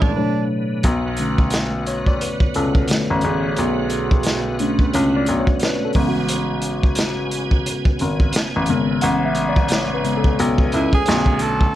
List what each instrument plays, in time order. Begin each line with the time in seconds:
Already playing: grand piano G#1, tine electric piano A2 E3 G#3 A3 B3 E4, tonewheel organ C#3 C#4 G#4
0.02 tenor saxophone D4, kick
0.16 tonewheel organ A2 D3 B3, tine electric piano B2 F#3 A3 D4 C#5
0.83 grand piano B1, tonewheel organ B2 B3 F#4, kick, closed hi-hat
1.17 tine electric piano D3 A3 C#4, closed hi-hat
1.38 kick
1.50 snare, closed hi-hat
1.86 tine electric piano C#5, closed hi-hat
2.03 tine electric piano C#5, kick
2.07 tine electric piano D5
2.21 tine electric piano B4, closed hi-hat
2.40 kick
2.54 grand piano C#2, tine electric piano A4, closed hi-hat
2.75 kick
2.88 tine electric piano D3 A3 C#4, snare, closed hi-hat
3.10 grand piano A1
3.21 grand piano A1, tine electric piano G#4, closed hi-hat
3.56 grand piano B1, tine electric piano F#4, closed hi-hat
3.90 closed hi-hat
4.11 kick
4.23 snare, closed hi-hat
4.59 tine electric piano A3 C#4 D4, closed hi-hat
4.79 kick
4.93 grand piano C#2, tine electric piano C#5, closed hi-hat
5.17 tine electric piano D5
5.26 grand piano B1, closed hi-hat
5.40 tine electric piano C#5
5.47 kick
5.59 tine electric piano B4, snare, closed hi-hat
5.85 tine electric piano A4
5.93 grand piano A1, tine electric piano C#3 G#3 B3, tonewheel organ C#3 G#5, kick, open hi-hat
6.08 tine electric piano F#4
6.28 closed hi-hat
6.62 closed hi-hat
6.83 kick
6.95 snare, closed hi-hat
7.31 closed hi-hat
7.51 kick
7.66 closed hi-hat
7.85 kick
7.99 grand piano G#1, closed hi-hat
8.20 kick
8.33 snare, closed hi-hat
8.56 grand piano A1
8.66 grand piano G#1, tine electric piano C#3 G#3 B3, closed hi-hat
9.01 grand piano A1, tine electric piano F#5, closed hi-hat
9.25 tine electric piano E5
9.35 closed hi-hat
9.49 tine electric piano D5
9.56 kick
9.68 tine electric piano C#5, snare, closed hi-hat
9.94 tine electric piano B4
10.04 tine electric piano C#3 G#3 B3, closed hi-hat
10.17 tine electric piano A4
10.24 kick
10.39 grand piano B1, closed hi-hat
10.58 kick
10.72 grand piano C#2, tenor saxophone E4, closed hi-hat
10.93 tenor saxophone G#4, kick
11.05 grand piano B1, tonewheel organ D3 A3 B3, tine electric piano D3 A3 C#4, closed hi-hat
11.09 snare
11.26 kick
11.39 tenor saxophone A4, closed hi-hat
11.61 kick